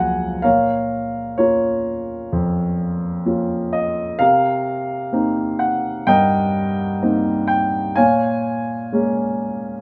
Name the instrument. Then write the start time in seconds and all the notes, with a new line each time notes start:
grand piano
Already playing: C#2 F#2 F3 F#3 A#3 C#5 F5 F#5 G#5 A#5
0.42 A#2 A#4 C#5 F5
1.38 A#3 C#4 F4 A#4 C#5
2.32 F2
3.25 A#3 C#4 F4
3.73 D#5
4.19 C3 A#4 F5
5.12 A#3 C4 D#4
5.59 F#5
6.07 G2 A#4 D#5 G5
7.02 A#3 C4 D#4
7.48 G5
7.96 A#2 C#5 F5 G#5
8.92 G#3 A#3 C#4